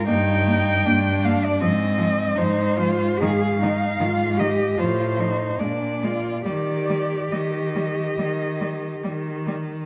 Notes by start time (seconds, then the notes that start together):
0.06 G2 A#3 D#4 G5
0.46 A#3
0.85 G2 A#3 D4
1.24 A#3 F5
1.44 D5
1.61 G#2 F3 C4 D#5
1.98 F3
2.35 G#2 F3 D#4 C5
2.77 F3 F4
3.19 G#2 D#3 G#4 F5
3.60 D#3 D#4
3.99 G#2 D#3 F4
4.37 D#3 G4 D#5
4.78 A2 F3 F4 C5
5.18 F3 D#4
5.59 A#2 G#3 D4 D5
6.03 G#3 F4
6.43 D#3 G3 G4 D5
6.89 G3
7.31 D#3 G3 D#5
7.75 G3
8.19 D#3 G3
8.61 G3
9.04 D#3 G3
9.47 G3